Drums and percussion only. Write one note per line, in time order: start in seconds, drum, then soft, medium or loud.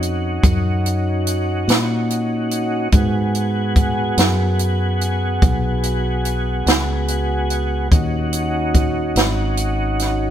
0.03 closed hi-hat medium
0.44 kick medium
0.44 closed hi-hat medium
0.86 closed hi-hat medium
1.27 closed hi-hat medium
1.69 snare medium
1.69 closed hi-hat medium
2.10 closed hi-hat medium
2.51 closed hi-hat medium
2.92 kick medium
2.92 closed hi-hat medium
3.35 closed hi-hat soft
3.76 kick medium
3.76 closed hi-hat soft
4.18 snare loud
4.18 closed hi-hat medium
4.59 closed hi-hat soft
5.01 closed hi-hat soft
5.42 kick medium
5.42 closed hi-hat medium
5.83 closed hi-hat medium
6.25 closed hi-hat medium
6.67 snare loud
6.67 closed hi-hat medium
7.08 closed hi-hat medium
7.50 closed hi-hat medium
7.92 kick medium
7.92 closed hi-hat medium
8.33 closed hi-hat medium
8.74 kick medium
8.74 closed hi-hat medium
9.16 snare medium
9.16 closed hi-hat medium
9.57 closed hi-hat medium
9.99 snare soft
9.99 closed hi-hat medium